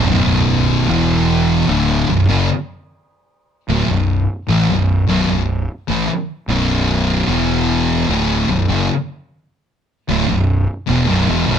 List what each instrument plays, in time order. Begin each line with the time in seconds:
0.09 fingered electric bass B0, distorted electric guitar B1 F#2 B2
0.89 fingered electric bass E1, distorted electric guitar E2 B2 E3
1.68 fingered electric bass D1, distorted electric guitar D2 A2 D3
2.09 fingered electric bass B0, distorted electric guitar B1 F#2
2.29 fingered electric bass F#1, distorted electric guitar F#2 C#3
3.69 fingered electric bass D1, distorted electric guitar D2 A2
3.88 fingered electric bass B0, distorted electric guitar B1 F#2
4.48 fingered electric bass A1, distorted electric guitar A2 E3
4.68 fingered electric bass B0, distorted electric guitar B1 F#2
5.07 fingered electric bass B0, distorted electric guitar B1 F#2
5.28 fingered electric bass B0, distorted electric guitar B1 F#2
5.88 fingered electric bass A1, distorted electric guitar A2 E3
6.09 muted fingered electric bass stroke, muted distorted electric guitar stroke
6.48 fingered electric bass B0, distorted electric guitar B1 F#2 B2
7.28 fingered electric bass E1, distorted electric guitar E2 B2 E3
8.08 fingered electric bass D1, distorted electric guitar D2 A2 D3
8.49 fingered electric bass B0, distorted electric guitar B1 F#2
8.69 fingered electric bass F#1, distorted electric guitar F#2 C#3
10.08 fingered electric bass D1, distorted electric guitar D2 A2
10.28 fingered electric bass B0, distorted electric guitar B1 F#2
10.87 fingered electric bass E1, distorted electric guitar E2 B2
11.06 distorted electric guitar B1 F#2
11.10 fingered electric bass B0
11.26 fingered electric bass E1, distorted electric guitar E2 B2
11.47 fingered electric bass B0, distorted electric guitar B1 F#2